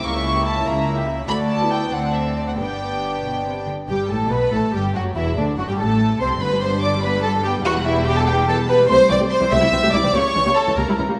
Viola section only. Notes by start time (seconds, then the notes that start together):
0.04 A#3 E4
1.29 A3 F#4
1.60 B3 E4
1.93 C4 D4
2.57 B3 D4
3.89 G3
4.10 A3
4.31 B3
4.53 A3
4.74 G3
4.95 F#3
5.15 E3
5.37 D3
5.58 F#3
5.68 G3
5.79 A3
6.21 C4
6.42 D3 D4
6.52 G3
6.63 B3
6.74 G3
6.84 D3
6.94 G3
7.05 B3
7.15 G3
7.25 D3
7.35 G3
7.46 B3
7.56 G3
7.65 E3 G4
7.76 G3
7.87 B3
7.97 G3
8.07 E3
8.17 G3
8.26 B3
8.38 G3
8.48 E3
8.58 G3
8.68 B3
8.78 G3
8.89 A3 G4
9.09 E3 C4
9.20 A3 G4
9.40 E3 C4
9.51 A3 G4
9.60 G3 E4
9.72 E3 C4
9.82 A3 G4
9.93 G3 E4
10.03 E3 C4
10.14 A#3 G4
10.35 E3 C#4
10.45 A#3 G4
10.67 E3 C#4
10.77 A#3 G4
10.88 G3 E4
10.98 E3 C#4
11.09 A#3 G4